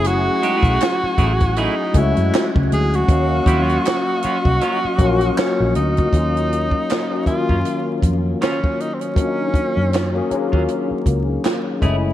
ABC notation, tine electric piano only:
X:1
M:4/4
L:1/16
Q:"Swing 16ths" 1/4=79
K:Gblyd
V:1 name="Tine electric piano"
[=A,D_F_A]4 z6 [_A,=A,DG]4- [_A,=A,DG] z | [G,B,Df]6 z4 [G,B,DFG]4- [G,B,DFG] z | [G,B,DF]4 z [G,B,DG] [E,B,DF]6 z4 | [G,B,D=DE]4 z [G,B,_DA] [G,B,DF]6 z2 [A,=A,D_F]2 |]